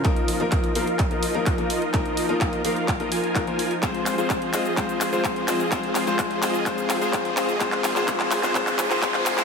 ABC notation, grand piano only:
X:1
M:4/4
L:1/16
Q:1/4=127
K:Ebdor
V:1 name="Grand piano"
[F,B,EB]3 [F,B,EB]3 [F,B,EB] z2 [F,B,EB] z [F,B,EB]2 [F,B,EB] z2 | [F,B,EB]3 [F,B,EB]3 [F,B,EB] z2 [F,B,EB] z2 [F,B,EB] [F,B,Ec] z2 | [A,CFc]3 [A,CFc]3 [A,CFc] z [A,CFc]3 [A,CFc]3 [A,CFc] z | [A,CFc]3 [A,CFc]3 [A,CFc] z [A,CFc]3 [A,CFc]3 [A,CFc] z |
[A,CFc]3 [A,CFc] [A,CF]3 [A,CFc] [A,CFc]3 [A,CFc] [A,CFc]3 [A,CFc] |]